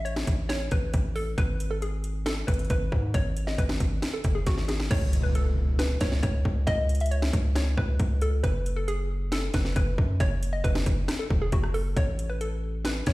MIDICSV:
0, 0, Header, 1, 5, 480
1, 0, Start_track
1, 0, Tempo, 441176
1, 1498, Time_signature, 4, 2, 24, 8
1, 14285, End_track
2, 0, Start_track
2, 0, Title_t, "Synth pluck"
2, 0, Program_c, 0, 84
2, 54, Note_on_c, 0, 73, 88
2, 507, Note_off_c, 0, 73, 0
2, 534, Note_on_c, 0, 73, 97
2, 746, Note_off_c, 0, 73, 0
2, 781, Note_on_c, 0, 71, 85
2, 1231, Note_off_c, 0, 71, 0
2, 1257, Note_on_c, 0, 69, 96
2, 1468, Note_off_c, 0, 69, 0
2, 1501, Note_on_c, 0, 71, 101
2, 1838, Note_off_c, 0, 71, 0
2, 1856, Note_on_c, 0, 69, 80
2, 1962, Note_off_c, 0, 69, 0
2, 1982, Note_on_c, 0, 68, 90
2, 2432, Note_off_c, 0, 68, 0
2, 2457, Note_on_c, 0, 69, 98
2, 2668, Note_off_c, 0, 69, 0
2, 2690, Note_on_c, 0, 71, 77
2, 2904, Note_off_c, 0, 71, 0
2, 2940, Note_on_c, 0, 71, 91
2, 3391, Note_off_c, 0, 71, 0
2, 3421, Note_on_c, 0, 73, 105
2, 3758, Note_off_c, 0, 73, 0
2, 3776, Note_on_c, 0, 75, 77
2, 3882, Note_off_c, 0, 75, 0
2, 3901, Note_on_c, 0, 71, 82
2, 4464, Note_off_c, 0, 71, 0
2, 4499, Note_on_c, 0, 69, 73
2, 4709, Note_off_c, 0, 69, 0
2, 4733, Note_on_c, 0, 68, 77
2, 4841, Note_off_c, 0, 68, 0
2, 4862, Note_on_c, 0, 66, 89
2, 5071, Note_off_c, 0, 66, 0
2, 5095, Note_on_c, 0, 68, 80
2, 5307, Note_off_c, 0, 68, 0
2, 5340, Note_on_c, 0, 73, 100
2, 5678, Note_off_c, 0, 73, 0
2, 5695, Note_on_c, 0, 71, 77
2, 5802, Note_off_c, 0, 71, 0
2, 5822, Note_on_c, 0, 69, 86
2, 6272, Note_off_c, 0, 69, 0
2, 6298, Note_on_c, 0, 71, 93
2, 6509, Note_off_c, 0, 71, 0
2, 6537, Note_on_c, 0, 73, 91
2, 6748, Note_off_c, 0, 73, 0
2, 6774, Note_on_c, 0, 73, 85
2, 7227, Note_off_c, 0, 73, 0
2, 7255, Note_on_c, 0, 75, 114
2, 7595, Note_off_c, 0, 75, 0
2, 7627, Note_on_c, 0, 76, 75
2, 7729, Note_off_c, 0, 76, 0
2, 7738, Note_on_c, 0, 73, 84
2, 8190, Note_off_c, 0, 73, 0
2, 8225, Note_on_c, 0, 73, 86
2, 8433, Note_off_c, 0, 73, 0
2, 8458, Note_on_c, 0, 71, 91
2, 8910, Note_off_c, 0, 71, 0
2, 8942, Note_on_c, 0, 69, 92
2, 9151, Note_off_c, 0, 69, 0
2, 9177, Note_on_c, 0, 71, 105
2, 9516, Note_off_c, 0, 71, 0
2, 9535, Note_on_c, 0, 69, 80
2, 9642, Note_off_c, 0, 69, 0
2, 9660, Note_on_c, 0, 68, 92
2, 10111, Note_off_c, 0, 68, 0
2, 10146, Note_on_c, 0, 69, 96
2, 10353, Note_off_c, 0, 69, 0
2, 10379, Note_on_c, 0, 71, 82
2, 10589, Note_off_c, 0, 71, 0
2, 10618, Note_on_c, 0, 71, 89
2, 11070, Note_off_c, 0, 71, 0
2, 11102, Note_on_c, 0, 73, 108
2, 11439, Note_off_c, 0, 73, 0
2, 11454, Note_on_c, 0, 75, 78
2, 11561, Note_off_c, 0, 75, 0
2, 11576, Note_on_c, 0, 71, 87
2, 12141, Note_off_c, 0, 71, 0
2, 12178, Note_on_c, 0, 69, 80
2, 12389, Note_off_c, 0, 69, 0
2, 12421, Note_on_c, 0, 68, 73
2, 12525, Note_off_c, 0, 68, 0
2, 12542, Note_on_c, 0, 66, 82
2, 12751, Note_off_c, 0, 66, 0
2, 12775, Note_on_c, 0, 69, 81
2, 12987, Note_off_c, 0, 69, 0
2, 13023, Note_on_c, 0, 73, 101
2, 13359, Note_off_c, 0, 73, 0
2, 13378, Note_on_c, 0, 71, 77
2, 13483, Note_off_c, 0, 71, 0
2, 13501, Note_on_c, 0, 69, 82
2, 13951, Note_off_c, 0, 69, 0
2, 13986, Note_on_c, 0, 71, 81
2, 14193, Note_off_c, 0, 71, 0
2, 14217, Note_on_c, 0, 73, 94
2, 14285, Note_off_c, 0, 73, 0
2, 14285, End_track
3, 0, Start_track
3, 0, Title_t, "808-style bass"
3, 0, Program_c, 1, 38
3, 0, Note_on_c, 1, 33, 115
3, 270, Note_off_c, 1, 33, 0
3, 298, Note_on_c, 1, 33, 107
3, 759, Note_off_c, 1, 33, 0
3, 780, Note_on_c, 1, 33, 105
3, 1010, Note_off_c, 1, 33, 0
3, 1019, Note_on_c, 1, 33, 103
3, 1480, Note_off_c, 1, 33, 0
3, 1499, Note_on_c, 1, 32, 111
3, 2655, Note_off_c, 1, 32, 0
3, 2698, Note_on_c, 1, 32, 106
3, 2929, Note_off_c, 1, 32, 0
3, 2938, Note_on_c, 1, 32, 109
3, 3169, Note_off_c, 1, 32, 0
3, 3179, Note_on_c, 1, 44, 104
3, 3409, Note_off_c, 1, 44, 0
3, 3418, Note_on_c, 1, 32, 112
3, 3879, Note_off_c, 1, 32, 0
3, 3898, Note_on_c, 1, 32, 109
3, 4129, Note_off_c, 1, 32, 0
3, 4139, Note_on_c, 1, 32, 105
3, 4369, Note_off_c, 1, 32, 0
3, 4618, Note_on_c, 1, 30, 104
3, 4849, Note_off_c, 1, 30, 0
3, 4860, Note_on_c, 1, 32, 106
3, 5320, Note_off_c, 1, 32, 0
3, 5339, Note_on_c, 1, 37, 115
3, 6495, Note_off_c, 1, 37, 0
3, 6539, Note_on_c, 1, 37, 107
3, 6769, Note_off_c, 1, 37, 0
3, 6780, Note_on_c, 1, 37, 106
3, 7010, Note_off_c, 1, 37, 0
3, 7020, Note_on_c, 1, 37, 108
3, 7250, Note_off_c, 1, 37, 0
3, 7259, Note_on_c, 1, 37, 115
3, 7950, Note_off_c, 1, 37, 0
3, 7979, Note_on_c, 1, 37, 106
3, 8440, Note_off_c, 1, 37, 0
3, 8459, Note_on_c, 1, 37, 108
3, 8689, Note_off_c, 1, 37, 0
3, 8700, Note_on_c, 1, 37, 109
3, 9160, Note_off_c, 1, 37, 0
3, 9179, Note_on_c, 1, 30, 112
3, 10335, Note_off_c, 1, 30, 0
3, 10380, Note_on_c, 1, 30, 108
3, 10610, Note_off_c, 1, 30, 0
3, 10620, Note_on_c, 1, 30, 104
3, 10850, Note_off_c, 1, 30, 0
3, 10860, Note_on_c, 1, 42, 104
3, 11090, Note_off_c, 1, 42, 0
3, 11100, Note_on_c, 1, 30, 114
3, 11560, Note_off_c, 1, 30, 0
3, 11579, Note_on_c, 1, 30, 114
3, 11809, Note_off_c, 1, 30, 0
3, 11820, Note_on_c, 1, 30, 105
3, 12050, Note_off_c, 1, 30, 0
3, 12299, Note_on_c, 1, 28, 106
3, 12529, Note_off_c, 1, 28, 0
3, 12539, Note_on_c, 1, 30, 110
3, 13000, Note_off_c, 1, 30, 0
3, 13018, Note_on_c, 1, 33, 116
3, 14175, Note_off_c, 1, 33, 0
3, 14219, Note_on_c, 1, 33, 112
3, 14285, Note_off_c, 1, 33, 0
3, 14285, End_track
4, 0, Start_track
4, 0, Title_t, "Impact"
4, 0, Program_c, 2, 103
4, 5340, Note_on_c, 2, 60, 88
4, 7259, Note_off_c, 2, 60, 0
4, 14285, End_track
5, 0, Start_track
5, 0, Title_t, "Drums"
5, 61, Note_on_c, 9, 42, 68
5, 170, Note_off_c, 9, 42, 0
5, 178, Note_on_c, 9, 38, 113
5, 287, Note_off_c, 9, 38, 0
5, 297, Note_on_c, 9, 42, 85
5, 298, Note_on_c, 9, 36, 91
5, 406, Note_off_c, 9, 42, 0
5, 407, Note_off_c, 9, 36, 0
5, 538, Note_on_c, 9, 38, 119
5, 544, Note_on_c, 9, 42, 75
5, 647, Note_off_c, 9, 38, 0
5, 652, Note_off_c, 9, 42, 0
5, 775, Note_on_c, 9, 42, 77
5, 779, Note_on_c, 9, 36, 99
5, 883, Note_off_c, 9, 42, 0
5, 888, Note_off_c, 9, 36, 0
5, 1017, Note_on_c, 9, 42, 83
5, 1019, Note_on_c, 9, 36, 102
5, 1126, Note_off_c, 9, 42, 0
5, 1128, Note_off_c, 9, 36, 0
5, 1258, Note_on_c, 9, 46, 52
5, 1367, Note_off_c, 9, 46, 0
5, 1499, Note_on_c, 9, 36, 123
5, 1499, Note_on_c, 9, 42, 80
5, 1608, Note_off_c, 9, 36, 0
5, 1608, Note_off_c, 9, 42, 0
5, 1743, Note_on_c, 9, 42, 98
5, 1851, Note_off_c, 9, 42, 0
5, 1981, Note_on_c, 9, 42, 70
5, 2090, Note_off_c, 9, 42, 0
5, 2218, Note_on_c, 9, 42, 85
5, 2327, Note_off_c, 9, 42, 0
5, 2458, Note_on_c, 9, 38, 122
5, 2464, Note_on_c, 9, 42, 76
5, 2567, Note_off_c, 9, 38, 0
5, 2573, Note_off_c, 9, 42, 0
5, 2699, Note_on_c, 9, 36, 98
5, 2699, Note_on_c, 9, 42, 79
5, 2759, Note_off_c, 9, 42, 0
5, 2759, Note_on_c, 9, 42, 68
5, 2808, Note_off_c, 9, 36, 0
5, 2820, Note_off_c, 9, 42, 0
5, 2820, Note_on_c, 9, 42, 58
5, 2879, Note_off_c, 9, 42, 0
5, 2879, Note_on_c, 9, 42, 46
5, 2937, Note_off_c, 9, 42, 0
5, 2937, Note_on_c, 9, 42, 84
5, 2939, Note_on_c, 9, 36, 101
5, 3046, Note_off_c, 9, 42, 0
5, 3048, Note_off_c, 9, 36, 0
5, 3179, Note_on_c, 9, 36, 94
5, 3288, Note_off_c, 9, 36, 0
5, 3418, Note_on_c, 9, 36, 119
5, 3418, Note_on_c, 9, 42, 81
5, 3527, Note_off_c, 9, 36, 0
5, 3527, Note_off_c, 9, 42, 0
5, 3662, Note_on_c, 9, 42, 96
5, 3771, Note_off_c, 9, 42, 0
5, 3778, Note_on_c, 9, 38, 71
5, 3887, Note_off_c, 9, 38, 0
5, 3898, Note_on_c, 9, 36, 95
5, 3901, Note_on_c, 9, 42, 68
5, 4007, Note_off_c, 9, 36, 0
5, 4009, Note_off_c, 9, 42, 0
5, 4018, Note_on_c, 9, 38, 109
5, 4126, Note_off_c, 9, 38, 0
5, 4137, Note_on_c, 9, 42, 82
5, 4139, Note_on_c, 9, 36, 89
5, 4246, Note_off_c, 9, 42, 0
5, 4247, Note_off_c, 9, 36, 0
5, 4378, Note_on_c, 9, 38, 119
5, 4384, Note_on_c, 9, 42, 76
5, 4487, Note_off_c, 9, 38, 0
5, 4492, Note_off_c, 9, 42, 0
5, 4614, Note_on_c, 9, 42, 80
5, 4619, Note_on_c, 9, 36, 101
5, 4723, Note_off_c, 9, 42, 0
5, 4728, Note_off_c, 9, 36, 0
5, 4857, Note_on_c, 9, 42, 85
5, 4859, Note_on_c, 9, 36, 102
5, 4859, Note_on_c, 9, 38, 60
5, 4966, Note_off_c, 9, 42, 0
5, 4968, Note_off_c, 9, 36, 0
5, 4968, Note_off_c, 9, 38, 0
5, 4978, Note_on_c, 9, 38, 65
5, 5087, Note_off_c, 9, 38, 0
5, 5098, Note_on_c, 9, 42, 69
5, 5099, Note_on_c, 9, 38, 95
5, 5207, Note_off_c, 9, 42, 0
5, 5208, Note_off_c, 9, 38, 0
5, 5219, Note_on_c, 9, 38, 91
5, 5328, Note_off_c, 9, 38, 0
5, 5339, Note_on_c, 9, 36, 127
5, 5339, Note_on_c, 9, 42, 79
5, 5339, Note_on_c, 9, 49, 109
5, 5447, Note_off_c, 9, 42, 0
5, 5447, Note_off_c, 9, 49, 0
5, 5448, Note_off_c, 9, 36, 0
5, 5582, Note_on_c, 9, 42, 93
5, 5691, Note_off_c, 9, 42, 0
5, 5821, Note_on_c, 9, 42, 77
5, 5930, Note_off_c, 9, 42, 0
5, 6298, Note_on_c, 9, 38, 120
5, 6304, Note_on_c, 9, 42, 78
5, 6407, Note_off_c, 9, 38, 0
5, 6413, Note_off_c, 9, 42, 0
5, 6535, Note_on_c, 9, 42, 82
5, 6538, Note_on_c, 9, 38, 94
5, 6539, Note_on_c, 9, 36, 97
5, 6643, Note_off_c, 9, 42, 0
5, 6647, Note_off_c, 9, 38, 0
5, 6648, Note_off_c, 9, 36, 0
5, 6659, Note_on_c, 9, 38, 67
5, 6768, Note_off_c, 9, 38, 0
5, 6777, Note_on_c, 9, 42, 78
5, 6780, Note_on_c, 9, 36, 104
5, 6886, Note_off_c, 9, 42, 0
5, 6888, Note_off_c, 9, 36, 0
5, 7019, Note_on_c, 9, 36, 91
5, 7128, Note_off_c, 9, 36, 0
5, 7258, Note_on_c, 9, 42, 78
5, 7259, Note_on_c, 9, 36, 127
5, 7367, Note_off_c, 9, 42, 0
5, 7368, Note_off_c, 9, 36, 0
5, 7499, Note_on_c, 9, 42, 80
5, 7560, Note_off_c, 9, 42, 0
5, 7560, Note_on_c, 9, 42, 77
5, 7619, Note_off_c, 9, 42, 0
5, 7619, Note_on_c, 9, 42, 77
5, 7679, Note_off_c, 9, 42, 0
5, 7679, Note_on_c, 9, 42, 80
5, 7742, Note_off_c, 9, 42, 0
5, 7742, Note_on_c, 9, 42, 75
5, 7851, Note_off_c, 9, 42, 0
5, 7859, Note_on_c, 9, 38, 114
5, 7968, Note_off_c, 9, 38, 0
5, 7979, Note_on_c, 9, 36, 95
5, 7979, Note_on_c, 9, 42, 76
5, 8088, Note_off_c, 9, 36, 0
5, 8088, Note_off_c, 9, 42, 0
5, 8220, Note_on_c, 9, 38, 122
5, 8225, Note_on_c, 9, 42, 80
5, 8328, Note_off_c, 9, 38, 0
5, 8334, Note_off_c, 9, 42, 0
5, 8459, Note_on_c, 9, 36, 96
5, 8568, Note_off_c, 9, 36, 0
5, 8697, Note_on_c, 9, 42, 77
5, 8699, Note_on_c, 9, 36, 101
5, 8806, Note_off_c, 9, 42, 0
5, 8808, Note_off_c, 9, 36, 0
5, 8938, Note_on_c, 9, 42, 73
5, 9047, Note_off_c, 9, 42, 0
5, 9179, Note_on_c, 9, 36, 121
5, 9180, Note_on_c, 9, 42, 83
5, 9288, Note_off_c, 9, 36, 0
5, 9288, Note_off_c, 9, 42, 0
5, 9423, Note_on_c, 9, 42, 92
5, 9532, Note_off_c, 9, 42, 0
5, 9662, Note_on_c, 9, 42, 76
5, 9771, Note_off_c, 9, 42, 0
5, 10139, Note_on_c, 9, 38, 122
5, 10144, Note_on_c, 9, 42, 77
5, 10248, Note_off_c, 9, 38, 0
5, 10253, Note_off_c, 9, 42, 0
5, 10375, Note_on_c, 9, 42, 83
5, 10379, Note_on_c, 9, 38, 92
5, 10380, Note_on_c, 9, 36, 98
5, 10484, Note_off_c, 9, 42, 0
5, 10487, Note_off_c, 9, 38, 0
5, 10489, Note_off_c, 9, 36, 0
5, 10500, Note_on_c, 9, 38, 70
5, 10609, Note_off_c, 9, 38, 0
5, 10618, Note_on_c, 9, 42, 78
5, 10620, Note_on_c, 9, 36, 102
5, 10727, Note_off_c, 9, 42, 0
5, 10729, Note_off_c, 9, 36, 0
5, 10860, Note_on_c, 9, 36, 96
5, 10969, Note_off_c, 9, 36, 0
5, 11099, Note_on_c, 9, 42, 80
5, 11100, Note_on_c, 9, 36, 127
5, 11208, Note_off_c, 9, 36, 0
5, 11208, Note_off_c, 9, 42, 0
5, 11343, Note_on_c, 9, 42, 92
5, 11452, Note_off_c, 9, 42, 0
5, 11579, Note_on_c, 9, 36, 95
5, 11582, Note_on_c, 9, 42, 78
5, 11688, Note_off_c, 9, 36, 0
5, 11691, Note_off_c, 9, 42, 0
5, 11699, Note_on_c, 9, 38, 115
5, 11808, Note_off_c, 9, 38, 0
5, 11818, Note_on_c, 9, 42, 81
5, 11819, Note_on_c, 9, 36, 93
5, 11927, Note_off_c, 9, 42, 0
5, 11928, Note_off_c, 9, 36, 0
5, 12058, Note_on_c, 9, 37, 72
5, 12058, Note_on_c, 9, 38, 120
5, 12064, Note_on_c, 9, 42, 78
5, 12167, Note_off_c, 9, 37, 0
5, 12167, Note_off_c, 9, 38, 0
5, 12172, Note_off_c, 9, 42, 0
5, 12299, Note_on_c, 9, 36, 99
5, 12408, Note_off_c, 9, 36, 0
5, 12536, Note_on_c, 9, 42, 76
5, 12539, Note_on_c, 9, 36, 106
5, 12645, Note_off_c, 9, 42, 0
5, 12648, Note_off_c, 9, 36, 0
5, 12659, Note_on_c, 9, 37, 95
5, 12768, Note_off_c, 9, 37, 0
5, 12777, Note_on_c, 9, 46, 52
5, 12886, Note_off_c, 9, 46, 0
5, 13018, Note_on_c, 9, 42, 79
5, 13019, Note_on_c, 9, 36, 124
5, 13127, Note_off_c, 9, 36, 0
5, 13127, Note_off_c, 9, 42, 0
5, 13261, Note_on_c, 9, 42, 91
5, 13370, Note_off_c, 9, 42, 0
5, 13501, Note_on_c, 9, 42, 72
5, 13610, Note_off_c, 9, 42, 0
5, 13977, Note_on_c, 9, 38, 124
5, 13983, Note_on_c, 9, 42, 75
5, 14086, Note_off_c, 9, 38, 0
5, 14092, Note_off_c, 9, 42, 0
5, 14214, Note_on_c, 9, 42, 81
5, 14217, Note_on_c, 9, 38, 92
5, 14218, Note_on_c, 9, 36, 97
5, 14285, Note_off_c, 9, 36, 0
5, 14285, Note_off_c, 9, 38, 0
5, 14285, Note_off_c, 9, 42, 0
5, 14285, End_track
0, 0, End_of_file